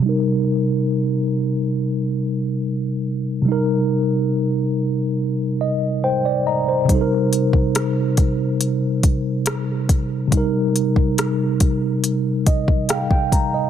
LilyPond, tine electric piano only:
\new Staff \with { instrumentName = "Tine electric piano" } { \time 4/4 \key c \minor \tempo 4 = 70 << { r1 | r2 r8 ees''8 <c'' g''>16 d''16 <ees'' bes''>16 c''16~ | c''16 r2. r8. | r2 r8 ees''8 <f'' g''>16 g''16 bes''16 ees''16 | } \\ { <c g ees' bes'>1 | <c g ees' bes'>2.~ <c g ees' bes'>8 r8 | <c g ees' a' bes'>1 | <c g ees' bes'>1 | } >> }